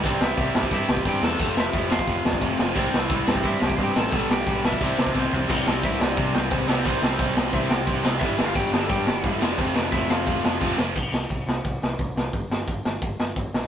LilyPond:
<<
  \new Staff \with { instrumentName = "Lead electric guitar" } { \time 4/4 \key c \major \tempo 4 = 176 << { d''8 e''4. e''8 g''8 g''8 a''8~ | a''8 e''4 f''4 d''8 c''8. r16 | d''8 e''4. e''8 g''16. f''32 g''8 a''8~ | a''8 g''4 e''4 d''8 c''8. r16 |
r4 e''8 d''4 c''4 b'8 | c''8 c''4. e''8 g''4 r8 | e''8. f''16 g''8. a''16 g''8. e''4 d''16 | c''8 d''8 e''8 f''2 r8 |
r1 | r1 | } \\ { d'8 e'4. e'8 g'8 g'8 a'8~ | a'8 e'4 f'4 d'8 c'8. r16 | d'8 e'4. e'8 g'8 g'8 a'8~ | a'8 g'4 e'4 d'8 c'8. r16 |
r4 e'8 d'4 c'4 b8 | c'8 c'4. e'8 g'4 r8 | e'8. f'16 g'8. a'16 g'8. e'4 d'16 | c'8 d'8 e'8 f'2 r8 |
r1 | r1 | } >> }
  \new Staff \with { instrumentName = "Distorted electric guitar" } { \clef bass \time 4/4 \key c \major <c g c'>4 <c g c'>8 <c g c'>8 <c g c'>4 <c g c'>8 <c g c'>8 | <f, c f>4 <f, c f>8 <f, c f>8 <f, c f>4 <f, c f>8 <f, c f>8 | <c g c'>4 <c g c'>8 <c g c'>8 <c g c'>4 <c g c'>8 <c g c'>8 | <g, d g>4 <g, d g>8 <g, d g>8 <c g c'>4 <c g c'>8 <c g c'>8 |
<c g c'>8 <c g c'>8 <c g c'>8 <c g c'>8 <c g c'>8 <c g c'>8 <c g c'>8 <c g c'>8 | <c g c'>8 <c g c'>8 <c g c'>8 <c g c'>8 <c g c'>8 <c g c'>8 <c g c'>8 <c g c'>8 | <g, d g>8 <g, d g>8 <g, d g>8 <g, d g>8 <g, d g>8 <g, d g>8 <g, d g>8 <f, c f>8 | <f, c f>8 <f, c f>8 <f, c f>8 <f, c f>8 <f, c f>8 <f, c f>8 <f, c f>8 <f, c f>8 |
r1 | r1 | }
  \new Staff \with { instrumentName = "Distorted electric guitar" } { \clef bass \time 4/4 \key c \major <c g c'>4 <c g c'>8 <c g c'>8 <c g c'>4 <c g c'>8 <c g c'>8 | <f, c f>4 <f, c f>8 <f, c f>8 <f, c f>4 <f, c f>8 <f, c f>8 | <c g c'>4 <c g c'>8 <c g c'>8 <c g c'>4 <c g c'>8 <c g c'>8 | <g, d g>4 <g, d g>8 <g, d g>8 <c g c'>4 <c g c'>8 <c g c'>8 |
<c g c'>8 <c g c'>8 <c g c'>8 <c g c'>8 <c g c'>8 <c g c'>8 <c g c'>8 <c g c'>8 | <c g c'>8 <c g c'>8 <c g c'>8 <c g c'>8 <c g c'>8 <c g c'>8 <c g c'>8 <c g c'>8 | <g, d g>8 <g, d g>8 <g, d g>8 <g, d g>8 <g, d g>8 <g, d g>8 <g, d g>8 <f, c f>8 | <f, c f>8 <f, c f>8 <f, c f>8 <f, c f>8 <f, c f>8 <f, c f>8 <f, c f>8 <f, c f>8 |
r1 | r1 | }
  \new Staff \with { instrumentName = "Overdriven electric guitar" } { \clef bass \time 4/4 \key c \major <c g c'>1 | <f, c f>1 | <c g c'>1 | <g, d g>2 <c g c'>2 |
<c g c'>2.~ <c g c'>8 <c g c'>8 | <c g c'>2.~ <c g c'>8 <c g c'>8 | <g, d g>2.~ <g, d g>8 <f, c f>8~ | <f, c f>2. <f, c f>8 r8 |
r1 | r1 | }
  \new Staff \with { instrumentName = "Picked electric bass" } { \clef bass \time 4/4 \key c \major c,8 c,8 c,8 g,8 g,8 c,8 g,8 e,8 | f,,8 f,,8 f,,4 f,,8 f,8 f,,8 f,,8 | c,8 c,8 c,8 g,8 g,8 c,8 g,8 a,,8 | b,,8 b,,8 b,,4 c,8 c8 c,8 c,8 |
c,8 c,8 c,8 c,8 c8 c,8 c,8 c,8 | c,8 c,8 c,8 c,8 c,8 c,8 c,8 c,8 | g,,8 g,,8 g,,8 g,,8 g,8 g,,8 g,,8 f,,8 | f,,8 f,,8 f,,8 f,,8 f,,8 f,,8 f,,8 f,,8 |
c,8 c,8 c,8 c,8 c,8 c,8 c,8 c,8 | g,,8 g,,8 g,,8 g,,8 g,,8 g,,8 g,,8 bes,,8 | }
  \new DrumStaff \with { instrumentName = "Drums" } \drummode { \time 4/4 <cymc bd>8 sn8 <cymc bd>8 sn16 bd16 <cymc bd>8 sn16 bd16 <cymc bd>8 sn8 | <cymc bd>8 sn8 <cymc bd>8 sn16 bd16 <cymc bd>8 sn16 bd16 <cymc bd>8 sn8 | <cymc bd>8 sn8 <cymc bd>8 sn16 bd16 <cymc bd>8 sn16 bd16 <cymc bd>8 sn8 | <cymc bd>8 sn8 <cymc bd>8 sn16 bd16 <cymc bd>8 sn16 bd16 <bd sn>8 tomfh8 |
<cymc bd>8 sn8 <cymc bd>8 sn8 <cymc bd>8 sn8 <cymc bd>8 sn8 | <cymc bd>8 sn8 <cymc bd>8 sn8 <cymc bd>8 sn8 <cymc bd>8 sn8 | <cymc bd>8 sn8 <cymc bd>8 sn8 <cymc bd>8 sn8 <cymc bd>8 sn8 | <cymc bd>8 sn8 <cymc bd>8 sn8 <cymc bd>8 sn8 <cymc bd>8 sn8 |
<cymc bd>8 sn8 <hho bd>8 sn8 <hho bd>8 sn8 <hho bd>8 sn8 | <hho bd>8 sn8 <hho bd>8 sn8 <hho bd>8 sn8 <hho bd>8 sn8 | }
>>